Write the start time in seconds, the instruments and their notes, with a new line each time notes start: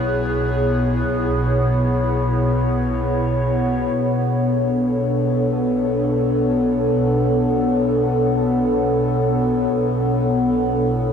Already playing: double bass section B1, analog synth pad B2 B3 E4 G#4 C#5, synth drone B3
3.96 double bass section B1, synth drone B3
4.26 analog synth pad D4 A4
10.65 analog synth pad E4